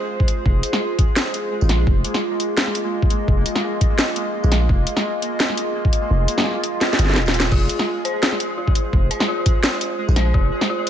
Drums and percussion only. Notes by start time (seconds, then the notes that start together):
0.20 kick
0.28 closed hi-hat
0.46 kick
0.63 closed hi-hat, tambourine
0.73 snare, tambourine
0.99 kick, closed hi-hat
1.16 snare, closed hi-hat
1.34 closed hi-hat
1.61 tambourine
1.69 snare, closed hi-hat
1.87 kick
2.04 closed hi-hat
2.14 snare, tambourine
2.40 closed hi-hat
2.57 snare, closed hi-hat
2.67 snare
2.75 closed hi-hat
3.02 kick
3.10 closed hi-hat
3.28 kick
3.46 closed hi-hat, tambourine
3.55 snare, tambourine
3.81 kick, closed hi-hat
3.99 snare, closed hi-hat
4.16 closed hi-hat
4.44 tambourine
4.52 snare, closed hi-hat
4.69 kick
4.87 closed hi-hat
4.97 snare, tambourine
5.22 closed hi-hat
5.40 snare, closed hi-hat
5.49 snare
5.57 closed hi-hat
5.85 kick
5.93 closed hi-hat
6.28 closed hi-hat, tambourine
6.38 snare, tambourine
6.40 snare
6.42 snare
6.44 snare
6.46 snare
6.48 snare
6.51 snare
6.53 snare
6.64 closed hi-hat
6.81 snare, closed hi-hat
6.93 snare
6.99 closed hi-hat
7.05 snare
7.10 snare
7.14 snare
7.16 snare
7.18 snare
7.26 snare, tambourine
7.34 closed hi-hat
7.40 snare
7.52 kick, crash
7.69 closed hi-hat
7.79 snare, tambourine
8.05 closed hi-hat
8.23 snare, closed hi-hat
8.32 snare
8.40 closed hi-hat
8.68 kick
8.75 closed hi-hat
8.93 kick
9.11 closed hi-hat, tambourine
9.20 snare, tambourine
9.46 kick, closed hi-hat
9.64 snare, closed hi-hat
9.81 closed hi-hat
10.09 tambourine
10.16 snare, closed hi-hat
10.34 kick
10.61 snare, tambourine
10.87 closed hi-hat